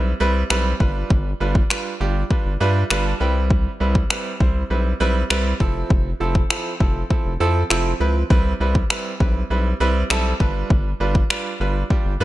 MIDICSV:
0, 0, Header, 1, 4, 480
1, 0, Start_track
1, 0, Key_signature, 0, "major"
1, 0, Tempo, 600000
1, 883, Time_signature, 4, 2, 24, 8
1, 9793, End_track
2, 0, Start_track
2, 0, Title_t, "Grand piano"
2, 0, Program_c, 0, 0
2, 0, Note_on_c, 0, 55, 83
2, 0, Note_on_c, 0, 60, 73
2, 0, Note_on_c, 0, 64, 78
2, 0, Note_on_c, 0, 71, 92
2, 90, Note_off_c, 0, 55, 0
2, 91, Note_off_c, 0, 60, 0
2, 91, Note_off_c, 0, 64, 0
2, 92, Note_off_c, 0, 71, 0
2, 161, Note_on_c, 0, 55, 109
2, 162, Note_on_c, 0, 60, 94
2, 164, Note_on_c, 0, 64, 94
2, 165, Note_on_c, 0, 71, 120
2, 330, Note_off_c, 0, 55, 0
2, 331, Note_off_c, 0, 60, 0
2, 332, Note_off_c, 0, 64, 0
2, 332, Note_off_c, 0, 71, 0
2, 401, Note_on_c, 0, 55, 110
2, 402, Note_on_c, 0, 60, 96
2, 404, Note_on_c, 0, 64, 95
2, 405, Note_on_c, 0, 71, 119
2, 570, Note_off_c, 0, 55, 0
2, 571, Note_off_c, 0, 60, 0
2, 571, Note_off_c, 0, 64, 0
2, 572, Note_off_c, 0, 71, 0
2, 641, Note_on_c, 0, 55, 93
2, 643, Note_on_c, 0, 62, 85
2, 644, Note_on_c, 0, 65, 82
2, 646, Note_on_c, 0, 71, 104
2, 1026, Note_off_c, 0, 55, 0
2, 1027, Note_off_c, 0, 62, 0
2, 1028, Note_off_c, 0, 65, 0
2, 1029, Note_off_c, 0, 71, 0
2, 1123, Note_on_c, 0, 55, 89
2, 1124, Note_on_c, 0, 62, 82
2, 1126, Note_on_c, 0, 65, 79
2, 1127, Note_on_c, 0, 71, 99
2, 1291, Note_off_c, 0, 55, 0
2, 1292, Note_off_c, 0, 62, 0
2, 1293, Note_off_c, 0, 65, 0
2, 1293, Note_off_c, 0, 71, 0
2, 1363, Note_on_c, 0, 55, 80
2, 1365, Note_on_c, 0, 62, 73
2, 1366, Note_on_c, 0, 65, 79
2, 1367, Note_on_c, 0, 71, 95
2, 1531, Note_off_c, 0, 55, 0
2, 1532, Note_off_c, 0, 62, 0
2, 1533, Note_off_c, 0, 65, 0
2, 1533, Note_off_c, 0, 71, 0
2, 1602, Note_on_c, 0, 55, 84
2, 1604, Note_on_c, 0, 62, 79
2, 1605, Note_on_c, 0, 65, 81
2, 1607, Note_on_c, 0, 67, 96
2, 1771, Note_off_c, 0, 55, 0
2, 1772, Note_off_c, 0, 62, 0
2, 1772, Note_off_c, 0, 65, 0
2, 1773, Note_off_c, 0, 67, 0
2, 1843, Note_on_c, 0, 55, 86
2, 1845, Note_on_c, 0, 62, 78
2, 1846, Note_on_c, 0, 65, 76
2, 1847, Note_on_c, 0, 71, 92
2, 2011, Note_off_c, 0, 55, 0
2, 2012, Note_off_c, 0, 62, 0
2, 2013, Note_off_c, 0, 65, 0
2, 2013, Note_off_c, 0, 71, 0
2, 2084, Note_on_c, 0, 55, 107
2, 2085, Note_on_c, 0, 62, 98
2, 2085, Note_on_c, 0, 76, 70
2, 2086, Note_on_c, 0, 65, 100
2, 2088, Note_on_c, 0, 71, 114
2, 2252, Note_off_c, 0, 55, 0
2, 2252, Note_off_c, 0, 62, 0
2, 2253, Note_off_c, 0, 65, 0
2, 2254, Note_off_c, 0, 71, 0
2, 2308, Note_off_c, 0, 76, 0
2, 2323, Note_on_c, 0, 55, 110
2, 2325, Note_on_c, 0, 62, 102
2, 2325, Note_on_c, 0, 77, 70
2, 2326, Note_on_c, 0, 65, 98
2, 2327, Note_on_c, 0, 71, 120
2, 2436, Note_off_c, 0, 77, 0
2, 2444, Note_on_c, 0, 81, 66
2, 2491, Note_off_c, 0, 55, 0
2, 2492, Note_off_c, 0, 62, 0
2, 2493, Note_off_c, 0, 65, 0
2, 2493, Note_off_c, 0, 71, 0
2, 2556, Note_off_c, 0, 81, 0
2, 2561, Note_on_c, 0, 55, 93
2, 2563, Note_on_c, 0, 60, 86
2, 2564, Note_on_c, 0, 64, 87
2, 2564, Note_on_c, 0, 79, 72
2, 2565, Note_on_c, 0, 71, 100
2, 2787, Note_off_c, 0, 79, 0
2, 2946, Note_off_c, 0, 55, 0
2, 2947, Note_off_c, 0, 60, 0
2, 2948, Note_off_c, 0, 64, 0
2, 2948, Note_off_c, 0, 71, 0
2, 3042, Note_on_c, 0, 55, 92
2, 3043, Note_on_c, 0, 60, 80
2, 3045, Note_on_c, 0, 64, 80
2, 3046, Note_on_c, 0, 71, 93
2, 3211, Note_off_c, 0, 55, 0
2, 3211, Note_off_c, 0, 60, 0
2, 3212, Note_off_c, 0, 64, 0
2, 3213, Note_off_c, 0, 71, 0
2, 3282, Note_on_c, 0, 55, 85
2, 3284, Note_on_c, 0, 60, 79
2, 3285, Note_on_c, 0, 64, 74
2, 3286, Note_on_c, 0, 71, 96
2, 3451, Note_off_c, 0, 55, 0
2, 3452, Note_off_c, 0, 60, 0
2, 3452, Note_off_c, 0, 64, 0
2, 3453, Note_off_c, 0, 71, 0
2, 3522, Note_on_c, 0, 55, 86
2, 3523, Note_on_c, 0, 60, 78
2, 3524, Note_on_c, 0, 64, 77
2, 3526, Note_on_c, 0, 72, 95
2, 3691, Note_off_c, 0, 55, 0
2, 3691, Note_off_c, 0, 60, 0
2, 3692, Note_off_c, 0, 64, 0
2, 3693, Note_off_c, 0, 72, 0
2, 3762, Note_on_c, 0, 55, 84
2, 3763, Note_on_c, 0, 60, 76
2, 3764, Note_on_c, 0, 64, 75
2, 3766, Note_on_c, 0, 71, 90
2, 3930, Note_off_c, 0, 55, 0
2, 3931, Note_off_c, 0, 60, 0
2, 3932, Note_off_c, 0, 64, 0
2, 3932, Note_off_c, 0, 71, 0
2, 4002, Note_on_c, 0, 55, 109
2, 4002, Note_on_c, 0, 60, 99
2, 4004, Note_on_c, 0, 64, 100
2, 4005, Note_on_c, 0, 71, 121
2, 4170, Note_off_c, 0, 55, 0
2, 4171, Note_off_c, 0, 60, 0
2, 4172, Note_off_c, 0, 64, 0
2, 4172, Note_off_c, 0, 71, 0
2, 4241, Note_on_c, 0, 55, 107
2, 4242, Note_on_c, 0, 60, 94
2, 4244, Note_on_c, 0, 64, 99
2, 4245, Note_on_c, 0, 71, 118
2, 4410, Note_off_c, 0, 55, 0
2, 4411, Note_off_c, 0, 60, 0
2, 4412, Note_off_c, 0, 64, 0
2, 4412, Note_off_c, 0, 71, 0
2, 4482, Note_on_c, 0, 53, 93
2, 4484, Note_on_c, 0, 60, 87
2, 4485, Note_on_c, 0, 64, 86
2, 4486, Note_on_c, 0, 69, 105
2, 4867, Note_off_c, 0, 53, 0
2, 4868, Note_off_c, 0, 60, 0
2, 4868, Note_off_c, 0, 64, 0
2, 4869, Note_off_c, 0, 69, 0
2, 4962, Note_on_c, 0, 53, 86
2, 4963, Note_on_c, 0, 60, 82
2, 4965, Note_on_c, 0, 64, 79
2, 4966, Note_on_c, 0, 69, 99
2, 5130, Note_off_c, 0, 53, 0
2, 5131, Note_off_c, 0, 60, 0
2, 5132, Note_off_c, 0, 64, 0
2, 5132, Note_off_c, 0, 69, 0
2, 5203, Note_on_c, 0, 53, 85
2, 5204, Note_on_c, 0, 60, 76
2, 5205, Note_on_c, 0, 64, 76
2, 5206, Note_on_c, 0, 69, 89
2, 5371, Note_off_c, 0, 53, 0
2, 5372, Note_off_c, 0, 60, 0
2, 5372, Note_off_c, 0, 64, 0
2, 5373, Note_off_c, 0, 69, 0
2, 5441, Note_on_c, 0, 53, 88
2, 5442, Note_on_c, 0, 60, 78
2, 5444, Note_on_c, 0, 64, 74
2, 5445, Note_on_c, 0, 69, 95
2, 5610, Note_off_c, 0, 53, 0
2, 5611, Note_off_c, 0, 60, 0
2, 5612, Note_off_c, 0, 64, 0
2, 5612, Note_off_c, 0, 69, 0
2, 5681, Note_on_c, 0, 53, 83
2, 5683, Note_on_c, 0, 60, 75
2, 5684, Note_on_c, 0, 64, 76
2, 5685, Note_on_c, 0, 69, 93
2, 5850, Note_off_c, 0, 53, 0
2, 5851, Note_off_c, 0, 60, 0
2, 5852, Note_off_c, 0, 64, 0
2, 5852, Note_off_c, 0, 69, 0
2, 5922, Note_on_c, 0, 53, 109
2, 5923, Note_on_c, 0, 60, 97
2, 5924, Note_on_c, 0, 64, 96
2, 5926, Note_on_c, 0, 69, 121
2, 6091, Note_off_c, 0, 53, 0
2, 6091, Note_off_c, 0, 60, 0
2, 6092, Note_off_c, 0, 64, 0
2, 6092, Note_off_c, 0, 69, 0
2, 6162, Note_on_c, 0, 53, 109
2, 6163, Note_on_c, 0, 60, 102
2, 6165, Note_on_c, 0, 64, 99
2, 6166, Note_on_c, 0, 69, 111
2, 6331, Note_off_c, 0, 53, 0
2, 6331, Note_off_c, 0, 60, 0
2, 6332, Note_off_c, 0, 64, 0
2, 6333, Note_off_c, 0, 69, 0
2, 6402, Note_on_c, 0, 53, 87
2, 6403, Note_on_c, 0, 60, 81
2, 6404, Note_on_c, 0, 64, 78
2, 6406, Note_on_c, 0, 71, 99
2, 6571, Note_off_c, 0, 53, 0
2, 6571, Note_off_c, 0, 60, 0
2, 6572, Note_off_c, 0, 64, 0
2, 6572, Note_off_c, 0, 71, 0
2, 6642, Note_on_c, 0, 55, 112
2, 6643, Note_on_c, 0, 60, 106
2, 6645, Note_on_c, 0, 64, 106
2, 6646, Note_on_c, 0, 71, 125
2, 6810, Note_off_c, 0, 55, 0
2, 6811, Note_off_c, 0, 60, 0
2, 6812, Note_off_c, 0, 64, 0
2, 6813, Note_off_c, 0, 71, 0
2, 6883, Note_on_c, 0, 55, 90
2, 6884, Note_on_c, 0, 60, 80
2, 6886, Note_on_c, 0, 64, 82
2, 6887, Note_on_c, 0, 71, 96
2, 7051, Note_off_c, 0, 55, 0
2, 7052, Note_off_c, 0, 60, 0
2, 7053, Note_off_c, 0, 64, 0
2, 7053, Note_off_c, 0, 71, 0
2, 7123, Note_on_c, 0, 55, 85
2, 7123, Note_on_c, 0, 60, 79
2, 7125, Note_on_c, 0, 64, 77
2, 7126, Note_on_c, 0, 71, 95
2, 7291, Note_off_c, 0, 55, 0
2, 7291, Note_off_c, 0, 60, 0
2, 7292, Note_off_c, 0, 64, 0
2, 7293, Note_off_c, 0, 71, 0
2, 7362, Note_on_c, 0, 55, 83
2, 7363, Note_on_c, 0, 60, 78
2, 7365, Note_on_c, 0, 64, 74
2, 7366, Note_on_c, 0, 71, 92
2, 7531, Note_off_c, 0, 55, 0
2, 7531, Note_off_c, 0, 60, 0
2, 7532, Note_off_c, 0, 64, 0
2, 7532, Note_off_c, 0, 71, 0
2, 7603, Note_on_c, 0, 55, 87
2, 7604, Note_on_c, 0, 60, 73
2, 7605, Note_on_c, 0, 64, 79
2, 7607, Note_on_c, 0, 71, 94
2, 7771, Note_off_c, 0, 55, 0
2, 7772, Note_off_c, 0, 60, 0
2, 7772, Note_off_c, 0, 64, 0
2, 7773, Note_off_c, 0, 71, 0
2, 7842, Note_on_c, 0, 55, 106
2, 7844, Note_on_c, 0, 60, 102
2, 7845, Note_on_c, 0, 64, 102
2, 7846, Note_on_c, 0, 71, 120
2, 8011, Note_off_c, 0, 55, 0
2, 8012, Note_off_c, 0, 60, 0
2, 8012, Note_off_c, 0, 64, 0
2, 8013, Note_off_c, 0, 71, 0
2, 8083, Note_on_c, 0, 55, 103
2, 8084, Note_on_c, 0, 60, 96
2, 8086, Note_on_c, 0, 64, 102
2, 8087, Note_on_c, 0, 69, 122
2, 8251, Note_off_c, 0, 55, 0
2, 8252, Note_off_c, 0, 60, 0
2, 8253, Note_off_c, 0, 64, 0
2, 8253, Note_off_c, 0, 69, 0
2, 8322, Note_on_c, 0, 55, 95
2, 8324, Note_on_c, 0, 62, 83
2, 8325, Note_on_c, 0, 65, 84
2, 8326, Note_on_c, 0, 71, 105
2, 8707, Note_off_c, 0, 55, 0
2, 8708, Note_off_c, 0, 62, 0
2, 8708, Note_off_c, 0, 65, 0
2, 8709, Note_off_c, 0, 71, 0
2, 8801, Note_on_c, 0, 55, 85
2, 8803, Note_on_c, 0, 62, 83
2, 8805, Note_on_c, 0, 65, 83
2, 8806, Note_on_c, 0, 71, 99
2, 8970, Note_off_c, 0, 55, 0
2, 8971, Note_off_c, 0, 62, 0
2, 8972, Note_off_c, 0, 65, 0
2, 8973, Note_off_c, 0, 71, 0
2, 9042, Note_on_c, 0, 55, 87
2, 9043, Note_on_c, 0, 62, 77
2, 9045, Note_on_c, 0, 65, 78
2, 9046, Note_on_c, 0, 71, 96
2, 9211, Note_off_c, 0, 55, 0
2, 9211, Note_off_c, 0, 62, 0
2, 9212, Note_off_c, 0, 65, 0
2, 9213, Note_off_c, 0, 71, 0
2, 9282, Note_on_c, 0, 55, 85
2, 9284, Note_on_c, 0, 62, 77
2, 9285, Note_on_c, 0, 65, 80
2, 9287, Note_on_c, 0, 71, 95
2, 9451, Note_off_c, 0, 55, 0
2, 9452, Note_off_c, 0, 62, 0
2, 9452, Note_off_c, 0, 65, 0
2, 9453, Note_off_c, 0, 71, 0
2, 9523, Note_on_c, 0, 55, 85
2, 9524, Note_on_c, 0, 62, 79
2, 9525, Note_on_c, 0, 65, 80
2, 9527, Note_on_c, 0, 67, 93
2, 9691, Note_off_c, 0, 55, 0
2, 9692, Note_off_c, 0, 62, 0
2, 9692, Note_off_c, 0, 65, 0
2, 9693, Note_off_c, 0, 67, 0
2, 9763, Note_on_c, 0, 55, 108
2, 9764, Note_on_c, 0, 62, 98
2, 9766, Note_on_c, 0, 65, 103
2, 9767, Note_on_c, 0, 71, 125
2, 9793, Note_off_c, 0, 55, 0
2, 9793, Note_off_c, 0, 62, 0
2, 9793, Note_off_c, 0, 65, 0
2, 9793, Note_off_c, 0, 71, 0
2, 9793, End_track
3, 0, Start_track
3, 0, Title_t, "Analog synth bass"
3, 0, Program_c, 1, 38
3, 0, Note_on_c, 1, 35, 99
3, 111, Note_off_c, 1, 35, 0
3, 163, Note_on_c, 1, 36, 82
3, 352, Note_off_c, 1, 36, 0
3, 403, Note_on_c, 1, 35, 94
3, 592, Note_off_c, 1, 35, 0
3, 643, Note_on_c, 1, 31, 100
3, 831, Note_off_c, 1, 31, 0
3, 884, Note_on_c, 1, 31, 106
3, 1072, Note_off_c, 1, 31, 0
3, 1125, Note_on_c, 1, 31, 100
3, 1313, Note_off_c, 1, 31, 0
3, 1605, Note_on_c, 1, 31, 89
3, 1792, Note_off_c, 1, 31, 0
3, 1964, Note_on_c, 1, 31, 92
3, 2058, Note_off_c, 1, 31, 0
3, 2085, Note_on_c, 1, 43, 98
3, 2273, Note_off_c, 1, 43, 0
3, 2325, Note_on_c, 1, 31, 92
3, 2512, Note_off_c, 1, 31, 0
3, 2565, Note_on_c, 1, 36, 98
3, 2941, Note_off_c, 1, 36, 0
3, 3044, Note_on_c, 1, 36, 95
3, 3232, Note_off_c, 1, 36, 0
3, 3524, Note_on_c, 1, 36, 95
3, 3712, Note_off_c, 1, 36, 0
3, 3763, Note_on_c, 1, 35, 95
3, 3951, Note_off_c, 1, 35, 0
3, 4003, Note_on_c, 1, 35, 84
3, 4191, Note_off_c, 1, 35, 0
3, 4242, Note_on_c, 1, 36, 97
3, 4431, Note_off_c, 1, 36, 0
3, 4483, Note_on_c, 1, 29, 101
3, 4671, Note_off_c, 1, 29, 0
3, 4723, Note_on_c, 1, 29, 108
3, 4912, Note_off_c, 1, 29, 0
3, 4963, Note_on_c, 1, 29, 92
3, 5152, Note_off_c, 1, 29, 0
3, 5443, Note_on_c, 1, 29, 90
3, 5632, Note_off_c, 1, 29, 0
3, 5804, Note_on_c, 1, 29, 84
3, 5898, Note_off_c, 1, 29, 0
3, 5922, Note_on_c, 1, 41, 97
3, 6111, Note_off_c, 1, 41, 0
3, 6163, Note_on_c, 1, 29, 87
3, 6352, Note_off_c, 1, 29, 0
3, 6402, Note_on_c, 1, 37, 95
3, 6591, Note_off_c, 1, 37, 0
3, 6643, Note_on_c, 1, 36, 121
3, 6832, Note_off_c, 1, 36, 0
3, 6882, Note_on_c, 1, 36, 99
3, 7071, Note_off_c, 1, 36, 0
3, 7363, Note_on_c, 1, 35, 90
3, 7552, Note_off_c, 1, 35, 0
3, 7603, Note_on_c, 1, 35, 103
3, 7791, Note_off_c, 1, 35, 0
3, 7843, Note_on_c, 1, 36, 85
3, 8031, Note_off_c, 1, 36, 0
3, 8082, Note_on_c, 1, 35, 91
3, 8271, Note_off_c, 1, 35, 0
3, 8322, Note_on_c, 1, 31, 98
3, 8511, Note_off_c, 1, 31, 0
3, 8563, Note_on_c, 1, 31, 106
3, 8752, Note_off_c, 1, 31, 0
3, 8801, Note_on_c, 1, 31, 99
3, 8990, Note_off_c, 1, 31, 0
3, 9282, Note_on_c, 1, 31, 86
3, 9471, Note_off_c, 1, 31, 0
3, 9643, Note_on_c, 1, 31, 96
3, 9737, Note_off_c, 1, 31, 0
3, 9762, Note_on_c, 1, 43, 96
3, 9793, Note_off_c, 1, 43, 0
3, 9793, End_track
4, 0, Start_track
4, 0, Title_t, "Drums"
4, 403, Note_on_c, 9, 26, 107
4, 483, Note_off_c, 9, 26, 0
4, 642, Note_on_c, 9, 36, 86
4, 722, Note_off_c, 9, 36, 0
4, 883, Note_on_c, 9, 36, 110
4, 963, Note_off_c, 9, 36, 0
4, 1241, Note_on_c, 9, 36, 89
4, 1321, Note_off_c, 9, 36, 0
4, 1363, Note_on_c, 9, 26, 115
4, 1443, Note_off_c, 9, 26, 0
4, 1844, Note_on_c, 9, 36, 86
4, 1924, Note_off_c, 9, 36, 0
4, 2324, Note_on_c, 9, 26, 111
4, 2404, Note_off_c, 9, 26, 0
4, 2804, Note_on_c, 9, 36, 105
4, 2884, Note_off_c, 9, 36, 0
4, 3161, Note_on_c, 9, 36, 94
4, 3241, Note_off_c, 9, 36, 0
4, 3283, Note_on_c, 9, 26, 118
4, 3363, Note_off_c, 9, 26, 0
4, 3524, Note_on_c, 9, 36, 87
4, 3604, Note_off_c, 9, 36, 0
4, 4243, Note_on_c, 9, 26, 107
4, 4323, Note_off_c, 9, 26, 0
4, 4482, Note_on_c, 9, 36, 86
4, 4562, Note_off_c, 9, 36, 0
4, 4723, Note_on_c, 9, 36, 112
4, 4803, Note_off_c, 9, 36, 0
4, 5081, Note_on_c, 9, 36, 94
4, 5161, Note_off_c, 9, 36, 0
4, 5204, Note_on_c, 9, 26, 117
4, 5284, Note_off_c, 9, 26, 0
4, 5443, Note_on_c, 9, 36, 92
4, 5523, Note_off_c, 9, 36, 0
4, 5684, Note_on_c, 9, 36, 85
4, 5764, Note_off_c, 9, 36, 0
4, 6163, Note_on_c, 9, 26, 110
4, 6243, Note_off_c, 9, 26, 0
4, 6643, Note_on_c, 9, 36, 112
4, 6723, Note_off_c, 9, 36, 0
4, 7001, Note_on_c, 9, 36, 88
4, 7081, Note_off_c, 9, 36, 0
4, 7123, Note_on_c, 9, 26, 113
4, 7203, Note_off_c, 9, 26, 0
4, 7363, Note_on_c, 9, 36, 92
4, 7443, Note_off_c, 9, 36, 0
4, 8082, Note_on_c, 9, 26, 113
4, 8162, Note_off_c, 9, 26, 0
4, 8322, Note_on_c, 9, 36, 85
4, 8402, Note_off_c, 9, 36, 0
4, 8563, Note_on_c, 9, 36, 108
4, 8643, Note_off_c, 9, 36, 0
4, 8920, Note_on_c, 9, 36, 90
4, 9000, Note_off_c, 9, 36, 0
4, 9043, Note_on_c, 9, 26, 119
4, 9123, Note_off_c, 9, 26, 0
4, 9523, Note_on_c, 9, 36, 89
4, 9603, Note_off_c, 9, 36, 0
4, 9793, End_track
0, 0, End_of_file